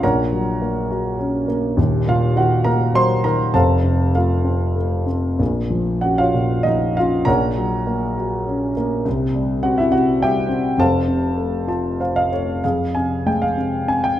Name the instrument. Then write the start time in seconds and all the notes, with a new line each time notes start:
grand piano
0.03 A#1 A#2 A#4 C#5 F#5 A#5
0.33 F#3
0.62 A#3
0.91 F#4
1.19 C#4
1.48 A#3
1.77 D#1 D#2
2.07 A#2 F4 F5
2.36 D#3 F#4 F#5
2.64 A#3 A#4 A#5
2.94 F#3 C5 C6
3.24 D#3 A#4 A#5
3.54 F1 F2 A4 C5 F5 A5
3.84 C3
4.15 A3 F4 A4 F5
4.45 C4
4.76 A3
5.07 C4
5.39 A#1 A#2
5.70 F3
6.01 C#4 F#4 F#5
6.18 F4 C#5 F5
6.34 A#2
6.63 F3 D#4 D#5
6.95 C#4 F4 F5
7.25 A#1 A#2 A#4 C#5 F#5 A#5
7.57 F#3
7.87 A#3
8.18 F#4
8.47 C#4
8.77 A#3
9.05 C2 C3
9.35 G3
9.63 C4 F#4 F#5
9.78 E4 E5
9.90 C3 F#4 F#5
10.21 G3 G4 E5 G5
10.48 C4
10.78 F1 F2 A4 C5 F5 A5
11.08 C3
11.37 A3
11.68 F4 A5
12.00 C5 F5
12.16 D#5 F5
12.32 A3 C#5
12.64 F2 G#4 F5
12.95 C3 G#5
13.26 G#3 G5
13.42 F5
13.57 C3
13.88 C4 G#5
14.04 G5